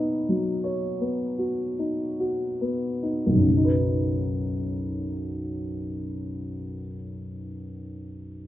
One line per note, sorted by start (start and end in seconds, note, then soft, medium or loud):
0.00 3.41 B2 soft
0.00 0.28 F#3 soft
0.00 1.01 B3 soft
0.00 1.79 D#4 soft
0.00 1.39 F#4 soft
0.00 1.74 D#5 soft
0.00 1.74 B5 medium
0.29 3.40 F#3 soft
0.64 3.40 C#5 soft
1.01 2.60 B3 soft
1.39 2.18 F#4 soft
1.79 3.01 D#4 soft
2.20 3.41 F#4 soft
2.61 3.43 B3 soft
3.03 3.44 D#4 soft
3.27 6.64 B1 soft
3.35 6.72 F#2 soft
3.42 6.80 C#3 soft
3.50 6.87 F#3 soft
3.57 6.94 D#4 soft
3.65 7.02 B4 soft